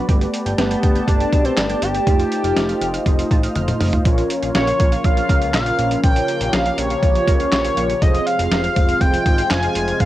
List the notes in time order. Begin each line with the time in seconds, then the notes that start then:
Already playing: B4 D5
0.09 G1 A3 B3 G4 A5, kick, closed hi-hat
0.21 G4, closed hi-hat
0.34 closed hi-hat
0.46 G1 G6, closed hi-hat
0.58 G1 B3 G6, snare, closed hi-hat
0.71 G6, closed hi-hat
0.83 G1 G6, kick, closed hi-hat
0.95 G6, closed hi-hat
1.08 G1 D4 G4, kick, closed hi-hat
1.20 G4, closed hi-hat
1.33 B1 A5, kick, closed hi-hat
1.45 C4 G6, closed hi-hat
1.57 G1 D4 G6, snare, clap, closed hi-hat
1.70 G6, closed hi-hat
1.82 G1 G4 G6, closed hi-hat
1.95 G4, closed hi-hat
2.07 F1 A3 D#4 F4 C5 D#5, kick, closed hi-hat
2.19 F4, closed hi-hat
2.32 closed hi-hat
2.44 F1 F6, closed hi-hat
2.56 F1 F6, snare, closed hi-hat
2.69 F6, closed hi-hat
2.81 F1 F6, closed hi-hat
2.94 F6, closed hi-hat
3.06 F1 F4, kick, closed hi-hat
3.19 F4, closed hi-hat
3.31 A1 A5, kick, closed hi-hat
3.43 F6, closed hi-hat
3.55 F1 F6, closed hi-hat, high tom
3.68 F6, closed hi-hat, mid tom
3.80 F1 F6, mid tom, open hi-hat
3.93 F4, closed hi-hat, floor tom
4.05 A#1 C#3 F3 A#3 C#4 F4 A#4 C#5, kick, closed hi-hat
4.18 F3, closed hi-hat
4.30 closed hi-hat
4.42 A#1 F5, closed hi-hat
4.55 A#1 C#5 F5, snare, closed hi-hat
4.67 F5, closed hi-hat
4.80 A#1 F5, kick, closed hi-hat
4.92 F5, closed hi-hat
5.04 A#1 F3 F5, kick, closed hi-hat
5.17 F3, closed hi-hat
5.29 C#2 A#4, kick, closed hi-hat
5.41 F5, closed hi-hat
5.54 A#1 F5, snare, clap, closed hi-hat
5.66 F5, closed hi-hat
5.79 A#1 F5, closed hi-hat
5.91 F3, closed hi-hat
6.04 A#1 F3 G4 G5, kick, closed hi-hat
6.16 F3, closed hi-hat
6.28 closed hi-hat
6.41 A#1 F5, closed hi-hat
6.53 A#1 F5, snare, closed hi-hat
6.66 F5, closed hi-hat
6.78 A#1 C#5 F5, closed hi-hat
6.90 F5, closed hi-hat
7.03 A#1 F3, kick, closed hi-hat
7.15 F3, closed hi-hat
7.28 C#2 A#4, kick, closed hi-hat
7.40 F5, closed hi-hat
7.52 A#1 C#5 F5, snare, clap, closed hi-hat
7.65 F5, closed hi-hat
7.77 A#1 F5, closed hi-hat
7.89 F3, closed hi-hat
8.02 F1 C3 F3 G#3 C4 F4 G#4 C5 D#5, kick, closed hi-hat
8.14 F3, closed hi-hat
8.27 F5, closed hi-hat
8.39 F1 F5, closed hi-hat
8.51 F1 F5, snare, closed hi-hat
8.64 F5, closed hi-hat
8.76 F1 F5, kick, closed hi-hat
8.89 F5, closed hi-hat
9.01 F1 F3 G5, kick, closed hi-hat
9.13 F3, closed hi-hat
9.26 G#1 G#4, kick, closed hi-hat
9.38 F5, closed hi-hat
9.50 F1 F5 G#5, snare, clap, closed hi-hat
9.63 F5, closed hi-hat
9.75 F1 F5, closed hi-hat
9.88 F3, closed hi-hat
10.00 F1 F3 F5, kick, closed hi-hat